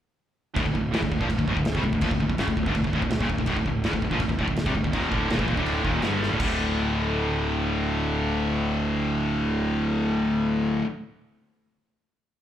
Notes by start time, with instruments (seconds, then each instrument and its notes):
0.56 fingered electric bass D1, distorted electric guitar D2 A2, kick, china
0.66 fingered electric bass D1, distorted electric guitar D2 A2, kick
0.75 fingered electric bass D1, distorted electric guitar D2 A2, kick
0.92 fingered electric bass A1, distorted electric guitar A2 E3, snare, china
1.02 fingered electric bass D1, distorted electric guitar D2 A2, kick
1.12 fingered electric bass D1, distorted electric guitar D2 A2, kick
1.21 fingered electric bass A#1, distorted electric guitar A#2 F3, kick
1.30 fingered electric bass D1, distorted electric guitar D2 A2, kick, china
1.38 fingered electric bass D1, distorted electric guitar D2 A2, kick
1.48 fingered electric bass D1, distorted electric guitar D2 A2, kick
1.54 fingered electric bass D1, distorted electric guitar D2 A2, kick
1.59 distorted electric guitar A2
1.65 snare, china
1.75 fingered electric bass C2, distorted electric guitar C3 G3, kick
1.84 fingered electric bass D1, distorted electric guitar D2 A2, kick
1.92 fingered electric bass D1, distorted electric guitar D2 A2, kick
2.01 fingered electric bass A#1, distorted electric guitar A#2 F3, kick, china
2.11 fingered electric bass D1, distorted electric guitar D2 A2, kick
2.20 fingered electric bass D1, distorted electric guitar D2 A2, kick
2.30 fingered electric bass D1, distorted electric guitar D2 A2, kick
2.38 fingered electric bass F#1, distorted electric guitar F#2 C#3, snare, china
2.48 fingered electric bass D1, distorted electric guitar D2 A2, kick
2.57 fingered electric bass D1, distorted electric guitar D2 A2, kick
2.66 fingered electric bass G1, distorted electric guitar G2 D3, kick
2.75 fingered electric bass D1, distorted electric guitar D2 A2, kick, china
2.84 fingered electric bass D1, distorted electric guitar D2 A2, kick
2.93 fingered electric bass D1, distorted electric guitar D2 A2, kick
3.02 fingered electric bass D1, distorted electric guitar D2 A2, kick
3.09 fingered electric bass D1, distorted electric guitar D2 A2, snare, china
3.13 distorted electric guitar D2 A2
3.20 fingered electric bass D#1, distorted electric guitar D#2 A#2, kick
3.29 fingered electric bass D1, distorted electric guitar D2 A2, kick
3.38 fingered electric bass D1, distorted electric guitar D2 A2, kick
3.46 fingered electric bass D1, distorted electric guitar D2 A2, kick, china
3.57 fingered electric bass D1, distorted electric guitar D2 A2, kick
3.66 fingered electric bass D1, distorted electric guitar D2 A2, kick
3.84 fingered electric bass A1, distorted electric guitar A2 E3, snare, china
3.93 fingered electric bass D1, distorted electric guitar D2 A2, kick
4.02 fingered electric bass D1, distorted electric guitar D2 A2, kick
4.10 fingered electric bass A#1, distorted electric guitar A#2 F3, kick
4.20 fingered electric bass D1, distorted electric guitar D2 A2, kick, china
4.29 fingered electric bass D1, distorted electric guitar D2 A2, kick
4.39 fingered electric bass D1, distorted electric guitar D2 A2, kick
4.47 fingered electric bass D1, distorted electric guitar D2 A2, kick
4.56 snare, china
4.66 fingered electric bass C2, distorted electric guitar C3 G3, kick
4.75 fingered electric bass D1, distorted electric guitar D2 A2, kick
4.84 fingered electric bass D1, distorted electric guitar D2 A2, kick
4.93 fingered electric bass D#1, distorted electric guitar D#2 A#2 D#3, kick, china
5.12 fingered electric bass D1, distorted electric guitar D2 A2 D3, kick
5.30 fingered electric bass D#1, distorted electric guitar D#2 A#2, snare, china
5.39 fingered electric bass A1, distorted electric guitar A2 E3, kick
5.48 fingered electric bass D#1, distorted electric guitar D#2 A#2, kick
5.57 fingered electric bass D1, distorted electric guitar D2 A2 D3, kick
5.66 china
5.84 fingered electric bass D#1, distorted electric guitar D#2 A#2 D#3, kick
6.02 fingered electric bass G1, distorted electric guitar G2 D3 G3, snare, china
6.23 snare
6.31 fingered electric bass D1, distorted electric guitar D2 A2
6.40 fingered electric bass D1, distorted electric guitar D2 A2, kick, crash
6.44 distorted electric guitar D3